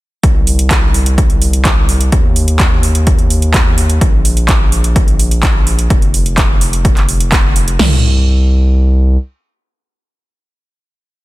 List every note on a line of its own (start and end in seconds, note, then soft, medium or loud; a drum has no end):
0.23 2.10 C2 medium
0.23 kick loud
0.23 closed hi-hat medium
0.47 open hi-hat loud
0.59 closed hi-hat medium
0.71 kick loud
0.71 clap loud
0.71 closed hi-hat medium
0.94 open hi-hat medium
1.06 closed hi-hat medium
1.18 kick loud
1.18 closed hi-hat medium
1.30 closed hi-hat soft
1.42 open hi-hat loud
1.53 closed hi-hat medium
1.65 kick loud
1.65 clap loud
1.65 closed hi-hat medium
1.89 open hi-hat medium
2.01 closed hi-hat medium
2.12 3.99 D#2 medium
2.12 kick loud
2.12 closed hi-hat medium
2.36 open hi-hat loud
2.48 closed hi-hat medium
2.60 kick loud
2.60 clap loud
2.60 closed hi-hat medium
2.83 open hi-hat loud
2.95 closed hi-hat medium
3.07 kick loud
3.07 closed hi-hat medium
3.19 closed hi-hat soft
3.30 open hi-hat loud
3.42 closed hi-hat medium
3.54 kick loud
3.54 clap loud
3.54 closed hi-hat medium
3.78 open hi-hat loud
3.90 closed hi-hat medium
4.01 5.88 A#1 medium
4.01 kick loud
4.01 closed hi-hat medium
4.25 open hi-hat loud
4.37 closed hi-hat medium
4.49 kick loud
4.49 clap loud
4.49 closed hi-hat medium
4.72 open hi-hat loud
4.84 closed hi-hat medium
4.96 kick loud
4.96 closed hi-hat medium
5.08 closed hi-hat soft
5.19 open hi-hat loud
5.31 closed hi-hat soft
5.43 kick loud
5.43 clap loud
5.43 closed hi-hat medium
5.67 open hi-hat loud
5.79 closed hi-hat medium
5.90 7.77 F1 medium
5.90 kick loud
5.90 closed hi-hat medium
6.02 closed hi-hat soft
6.14 open hi-hat loud
6.26 closed hi-hat soft
6.38 kick loud
6.38 clap loud
6.38 closed hi-hat medium
6.61 open hi-hat loud
6.73 closed hi-hat medium
6.85 kick loud
6.85 closed hi-hat medium
6.97 clap soft
6.97 closed hi-hat soft
7.09 open hi-hat loud
7.20 closed hi-hat medium
7.32 kick loud
7.32 clap loud
7.32 closed hi-hat medium
7.56 open hi-hat loud
7.68 closed hi-hat soft
7.79 9.17 C2 loud
7.79 snare loud
7.79 floor tom loud
7.79 crash medium